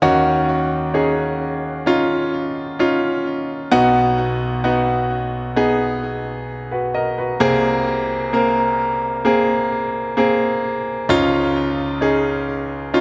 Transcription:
0.02 D#2 D#3 C#4 D#4 F#4
0.94 C#4 D#4 G#4
1.86 C#4 D#4 F4
2.79 C#4 D#4 F4
3.71 B1 B2 B3 D#4 F#4
4.64 B3 D#4 F#4
5.56 B3 D#4 G#4
6.71 F#4 B4
6.95 A#4 D#5
7.18 F#4 B4
7.40 C2 C3 A#3 C4 G#4
8.33 A#3 C4 A#4
9.25 A#3 C4 G#4
10.17 A#3 C4 G#4
11.09 C#2 C#3 C#4 D#4 F4
12.01 C#4 D#4 G#4
12.94 C#4 D#4 F4

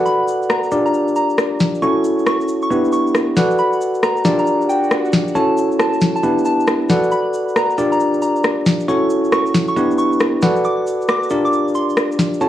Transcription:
Already playing: F#4 A4 B4 D5 F#5
0.06 B5, cabasa
0.28 cabasa
0.43 cabasa
0.50 A#5, cross-stick, cabasa
0.63 cabasa
0.72 D4 F4 G4 A#4 D5, cabasa
0.86 A#5, cabasa
0.94 cabasa
1.08 cabasa
1.16 A#5, cabasa
1.30 cabasa
1.38 cross-stick, cabasa
1.60 snare, cabasa
1.75 cabasa
1.82 C#4 E4 F#4 A4 C#5 C#6, cabasa
2.04 cabasa
2.19 cabasa
2.26 C#6, cross-stick, cabasa
2.41 cabasa
2.48 cabasa
2.62 C#6, cabasa
2.70 B3 D4 E4 G4 B4, cabasa
2.85 cabasa
2.92 C#6, cabasa
3.07 cabasa
3.15 cross-stick, cabasa
3.37 F#4 A4 B4 D5 F#5, snare, cabasa
3.51 cabasa
3.58 B5, cabasa
3.73 cabasa
3.81 cabasa
3.94 cabasa
4.03 A#5, cross-stick, cabasa
4.17 cabasa
4.25 D4 F4 G4 A#4 D5, snare, cabasa
4.39 A#5, cabasa
4.46 swell, cabasa
4.62 cabasa
4.69 G5, cabasa
4.84 cabasa
4.91 cross-stick, cabasa
5.05 cabasa
5.13 snare, cabasa
5.28 cabasa
5.35 C#4 E4 F#4 A4 C#5 A5, cabasa
5.57 cabasa
5.72 cabasa
5.79 A5, cross-stick, cabasa
5.93 cabasa
6.01 snare, cabasa
6.16 A5, cabasa
6.23 B3 D4 E4 G4 B4, cabasa
6.38 cabasa
6.45 A5, cabasa
6.60 cabasa
6.67 cross-stick, cabasa
6.89 F#4 A4 B4 D5 F#5, snare, cabasa
7.03 cabasa
7.11 B5, cabasa
7.34 cabasa
7.48 cabasa
7.56 A#5, cross-stick, cabasa
7.70 cabasa
7.78 D4 F4 G4 A#4 D5, cabasa
7.92 A#5, cabasa
8.00 cabasa
8.14 cabasa
8.22 A#5, cabasa
8.36 cabasa
8.44 cross-stick, cabasa
8.66 snare, cabasa
8.80 cabasa
8.88 C#4 E4 F#4 A4 C#5 C#6, cabasa
9.10 cabasa
9.24 cabasa
9.32 C#6, cross-stick, cabasa
9.46 cabasa
9.54 snare, cabasa
9.68 C#6, cabasa
9.76 B3 D4 E4 G4 B4, cabasa
9.91 cabasa
9.98 C#6, cabasa
10.13 cabasa
10.20 cross-stick, cabasa
10.42 F#4 A4 B4 D5 F#5, snare, cabasa
10.56 cabasa
10.64 D6, cabasa
10.87 cabasa
11.01 cabasa
11.08 D6, cross-stick, cabasa
11.23 cabasa
11.30 D4 F4 G4 A#4 D5, cabasa
11.45 D6, cabasa
11.53 cabasa
11.68 cabasa
11.75 C6, cabasa
11.90 cabasa
11.97 cross-stick, cabasa
12.12 cabasa
12.19 snare, cabasa
12.34 cabasa
12.41 C#4 E4 F#4 A4 C#5 A5, cabasa

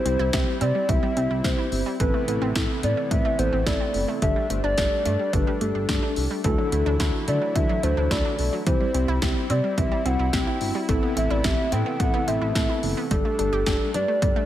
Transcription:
Already playing: G3 C4 E4 C5
0.05 C2 C4 E4 G4, closed hi-hat
0.19 C2 E4
0.33 C2 C4 E4 G4 E5, kick, snare, closed hi-hat
0.61 C3 C4 E4 G4 D5, closed hi-hat
0.75 G3
0.89 C2 E3 C4 E4 G4 E5, kick, closed hi-hat
1.03 G3
1.17 C2 C4 E4 G4, closed hi-hat
1.30 C2 E4
1.44 C2 C4 E4 G4 C5 E5, kick, snare, closed hi-hat
1.58 E4
1.72 G1 C4 E4 G4, open hi-hat
1.86 G3
2.00 A1 C3 E3 A3 B3 C4 E4 A4 B4, kick, closed hi-hat
2.14 A3
2.28 A1 B3 C4 E4 A4, closed hi-hat
2.42 A1 C4
2.56 A1 C4 E4 A4, kick, snare, closed hi-hat
2.83 A2 B3 C4 E4 A4 D5, closed hi-hat
2.97 A3
3.11 A1 E3 C4 E4 B4 E5, kick, closed hi-hat
3.25 A3
3.39 A1 B3 C4 E4 A4 C5, closed hi-hat
3.53 A1 C4
3.66 A1 C4 E4 A4 D5, kick, snare, closed hi-hat
3.80 C4
3.94 F#1 C4 E4 A4, open hi-hat
4.08 A3
4.22 G1 D3 G3 D4 G4 A4 E5, kick, closed hi-hat
4.36 G3
4.50 G1 A3 D4 G4 C5, closed hi-hat
4.64 G1 D4 D5
4.78 G1 D4 G4 A4 D5, kick, snare, closed hi-hat
5.05 G2 A3 D4 G4 A4, closed hi-hat
5.19 G3
5.33 G1 D3 D4 G4 A4 B4, kick, closed hi-hat
5.47 G3
5.61 G1 A3 D4 G4 A4, closed hi-hat
5.75 G1 D4
5.89 G1 D4 G4 A4 D5, kick, snare, closed hi-hat
6.03 D4
6.16 C2 D4 G4 A4, open hi-hat
6.31 G3
6.44 D2 D3 E3 F#3 D4 E4 F#4 A4, kick, closed hi-hat
6.58 F#3
6.72 D2 A3 D4 F#4 A4, closed hi-hat
6.86 D2 D4
7.00 D2 D4 E4 F#4 A4, kick, snare, closed hi-hat
7.28 D3 A3 D4 F#4 A4 D5, closed hi-hat
7.42 F#3
7.56 D2 E3 D4 F#4 A4 E5, kick, closed hi-hat
7.69 F#3
7.83 D2 A3 D4 F#4 A4 C5, closed hi-hat
7.97 D2 D4
8.11 D2 D4 E4 F#4 A4 D5, kick, snare, closed hi-hat
8.25 D4
8.39 B1 D4 F#4 A4, open hi-hat
8.53 F#3
8.67 C2 E3 G3 C4 E4 G4 C5, kick, closed hi-hat
8.80 G3
8.94 C2 C4 E4 G4, closed hi-hat
9.08 C2 E4
9.22 C2 C4 E4 G4 E5, kick, snare, closed hi-hat
9.50 C3 C4 E4 G4 D5, closed hi-hat
9.64 G3
9.78 C2 E3 C4 E4 G4 E5, kick, closed hi-hat
9.92 G3
10.05 C2 C4 E4 F#4 F#5, closed hi-hat
10.19 C2 E4
10.33 C2 C4 E4 G4 E5 G5, kick, snare, closed hi-hat
10.47 E4
10.61 G1 C4 E4 F#4, open hi-hat
10.75 G3
10.89 A1 C3 E3 A3 B3 C4 E4 A4, kick, closed hi-hat
11.03 B3
11.17 A1 C4 E4 A4 E5, closed hi-hat
11.30 A1 E4 D5
11.44 A1 C4 E4 G4 A4 E5, kick, snare, closed hi-hat
11.72 A2 C4 E4 A4 G5, closed hi-hat
11.86 B3
12.00 A1 A3 C4 E4 A4 F#5, kick, closed hi-hat
12.14 B3
12.28 A1 C4 E4 A4 E5, closed hi-hat
12.42 A1 E4
12.55 A1 C4 E4 A4, kick, snare, closed hi-hat
12.69 E4
12.83 F#1 C4 E4 A4, open hi-hat
12.97 B3
13.11 G1 G3 D4 G4 A4, kick, closed hi-hat
13.25 A3
13.39 G1 D4 G4 A4, closed hi-hat
13.53 G1 G4
13.66 G1 D4 G4 A4 G5, kick, snare, closed hi-hat
13.94 G2 D4 G4 B4 D5, closed hi-hat
14.08 A3
14.22 G1 G3 D4 G4 A4 D5, kick, closed hi-hat
14.36 A3

